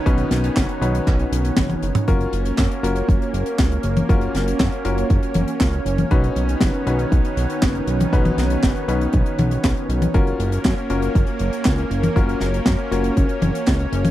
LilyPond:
<<
  \new Staff \with { instrumentName = "Grand piano" } { \time 4/4 \key fis \major \tempo 4 = 119 <cis' dis' fis' b'>4. <cis' dis' fis' b'>2~ <cis' dis' fis' b'>8 | <cis' eis' fis' ais'>4. <cis' eis' fis' ais'>2~ <cis' eis' fis' ais'>8 | <cis' eis' fis' ais'>4. <cis' eis' fis' ais'>2~ <cis' eis' fis' ais'>8 | <cis' dis' fis' b'>4. <cis' dis' fis' b'>2~ <cis' dis' fis' b'>8 |
<cis' dis' fis' b'>4. <cis' dis' fis' b'>2~ <cis' dis' fis' b'>8 | <cis' eis' fis' ais'>4. <cis' eis' fis' ais'>2~ <cis' eis' fis' ais'>8 | <cis' eis' fis' ais'>4. <cis' eis' fis' ais'>2~ <cis' eis' fis' ais'>8 | }
  \new Staff \with { instrumentName = "Analog synth pad" } { \time 4/4 \key fis \major << { cis'1 | cis'1~ | cis'1~ | cis'1~ |
cis'1 | cis'1~ | cis'1 | } \\ { <dis b>1 | ais1~ | ais1 | <dis b>1~ |
<dis b>1 | ais1~ | ais1 | } >> }
  \new Staff \with { instrumentName = "Analog synth bass" } { \clef bass \time 4/4 \key fis \major b,,8 b,,8 fis,,8 b,,8 b,,8 b,,8 fis,,8 fis,,8 | fis,,8 fis,,8 fis,8 fis,,8 fis,,8 fis,,8 cis,8 fis,,8 | fis,,8 fis,,8 fis,8 fis,,8 fis,,8 fis,,8 cis,8 fis,,8 | b,,8 b,,8 fis,,8 b,,8 b,,8 b,,8 fis,,8 b,,8 |
b,,8 b,,8 fis,,8 b,,8 b,,8 b,,8 b,,8 b,,8 | fis,,8 fis,,8 fis,8 fis,,8 fis,,8 fis,,8 cis,8 fis,,8 | fis,,8 fis,,8 fis,8 fis,,8 fis,,8 fis,,8 cis,8 fis,,8 | }
  \new DrumStaff \with { instrumentName = "Drums" } \drummode { \time 4/4 <hh bd>16 hh16 <hh sn>16 hh16 <hc hh bd sn>16 hh16 hh16 hh16 <hc hh bd>16 hh16 hh16 hh16 <hc hh bd sn tommh>16 <hh tommh>16 hh16 <hh toml>16 | <hh bd>16 hh16 hh16 hh16 <hc hh bd sn>16 hh16 hh16 hh16 <hh bd>16 hh16 hh16 hh16 <hc hh bd sn>16 hh16 hh16 <hh tommh>16 | <hh bd>16 hh16 <hh sn>16 hh16 <hc hh bd sn>16 hh16 hh16 hh16 <hh bd>16 hh16 <hh tommh>16 hh16 <hc hh bd sn>16 hh16 hh16 <hh tommh>16 | <hh bd>16 hh16 hh16 hh16 <hc hh bd sn>16 hh16 hh16 hh16 <hh bd>16 hh16 hh16 hh16 <hc hh bd sn>16 hh16 hh16 <hh tommh>16 |
<hh bd>16 <hh tommh>16 <hh sn>16 hh16 <hc hh bd sn>16 hh16 hh16 hh16 <hh bd>16 hh16 <hh tommh>16 hh16 <hc hh bd sn>16 hh16 hh16 <hh tommh>16 | <hh bd>16 hh16 hh16 hh16 <hc hh bd sn>16 hh16 hh16 hh16 <hh bd>16 hh16 hh16 hh16 <hc hh bd sn>16 hh16 hh16 <hh tommh>16 | <hh bd>16 hh16 <hh sn>16 hh16 <hc hh bd sn>16 hh16 hh16 hh16 <hh bd>16 hh16 <hh tommh>16 hh16 <hc hh bd sn>16 hh16 hh16 <hh tommh>16 | }
>>